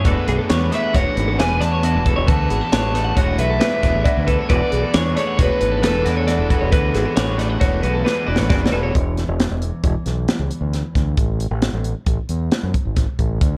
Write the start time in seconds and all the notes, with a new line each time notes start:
0.04 E1 E2 E3 A3 B3 D4 F#4 G#4 A4 B4, kick, closed hi-hat
0.28 B1 D4 G#4 B4, closed hi-hat
0.39 A4
0.49 E2 B3 D4 G#4 B4 C#5, snare, closed hi-hat
0.72 A3 G#4 B4 D5 E5, snare, closed hi-hat
0.76 D4
0.83 F#5
0.93 E1 E3 B3 D4 F#4 G#4 C#5 F#5, kick, snare, closed hi-hat
0.97 B4
1.17 G#1 B4, closed hi-hat
1.28 A4
1.38 E1 E2 B3 D4 B4 G#5, snare, closed hi-hat
1.42 G#4 B4
1.60 E2 G#4 B4 D5 A5, snare, closed hi-hat
1.65 D4
1.72 C#5
1.82 E2 E3 B3 D4 F#4 G#4 B4 D5, closed hi-hat
1.95 E1
2.05 D4 G#4 A4 B4, kick, closed hi-hat
2.16 E1 C#5
2.27 D2 E2 E3 B3 D4 F#4 G#4 B4 A5, kick, closed hi-hat
2.31 B4
2.50 G#1 D4 G#4 B4, closed hi-hat
2.61 A4
2.72 A1 B3 D4 G#4 B4 C#5 A5, snare, closed hi-hat
2.94 A3 D4 G#4 B4 D5, snare, closed hi-hat
3.05 F#5
3.17 E1 E3 B3 D4 F#4 C#5 F#5, kick, closed hi-hat
3.21 G#4 B4
3.39 B1 B4 E5, closed hi-hat
3.50 A4
3.60 E2 B3 D4 G#4 B4, snare, closed hi-hat
3.64 B4
3.83 E1 G#4 B4 D5, kick, snare, closed hi-hat
3.87 D4
3.93 A1 C#5
4.05 E2 E3 B3 D4 F#4 G#4 B4 D5, kick, closed hi-hat
4.17 D2
4.27 D4 G#4 A4 B4, kick, closed hi-hat
4.39 C#5
4.49 E1 E2 E3 B3 D4 F#4 G#4 B4 D5, kick, closed hi-hat
4.72 B1 G#4 B4, closed hi-hat
4.77 D4
4.83 A4
4.94 E2 B3 D4 G#4 C#5, snare, closed hi-hat
4.99 B4
5.16 A3 G#4 B4 C#5 D5, snare, closed hi-hat
5.20 D4
5.27 F#5
5.37 E1 E3 B3 D4 F#4 G#4 B4 C#5, kick, snare, closed hi-hat
5.42 B4
5.61 G#1 B4, closed hi-hat
5.72 A4
5.82 E1 E2 B3 D4 G#4 A4 B4, snare, closed hi-hat
5.87 B4
6.04 E2 D4 F#4 G#4 B4 D5, snare, closed hi-hat
6.17 C#5
6.27 E2 E3 B3 D4 F#4 G#4 B4 D5, snare, closed hi-hat
6.39 E1
6.50 F#4 G#4 B4, kick, closed hi-hat
6.54 D4
6.61 E1 C#5
6.71 D2 E2 E3 B3 D4 F#4 G#4 B4, kick, closed hi-hat
6.93 G#1 D4 F#4 G#4 B4, snare, closed hi-hat
7.05 A4
7.16 A1 B3 D4 G#4 C#5, snare, closed hi-hat
7.20 B4
7.38 A3 D4 G#4 B4 D5, snare, closed hi-hat
7.50 F#5
7.60 E1 E3 B3 D4 F#4 G#4 C#5, kick, snare, closed hi-hat
7.64 B4
7.83 B1 F#4 B4, closed hi-hat
7.94 A4
8.05 E2 B3 D4 G#4 B4, snare
8.27 E1 F#4 G#4 B4 D5
8.31 D4
8.36 A1 C#5, snare
8.49 F#1 E2 E3 B3 D4 F#4 G#4 B4 D5, kick, snare
8.66 snare
8.71 E1 D4 G#4 A4 B4
8.83 C#5
8.95 E1, kick, closed hi-hat
9.17 snare, closed hi-hat
9.28 E1
9.40 snare, closed hi-hat
9.51 E1
9.62 closed hi-hat
9.84 E1, kick, closed hi-hat
10.06 B1, snare, closed hi-hat
10.28 snare, closed hi-hat
10.40 C#2
10.51 closed hi-hat
10.61 D2
10.74 snare, closed hi-hat
10.95 D2, kick, snare, closed hi-hat
11.17 A1, kick, closed hi-hat
11.40 closed hi-hat
11.51 A1
11.62 snare, closed hi-hat
11.73 A1
11.84 closed hi-hat
12.07 A1, kick, closed hi-hat
12.29 E2, closed hi-hat
12.51 snare, closed hi-hat
12.63 F#2
12.74 kick, closed hi-hat
12.85 G#1
12.96 kick, snare, closed hi-hat
13.19 A1, kick, closed hi-hat
13.41 D2, kick, closed hi-hat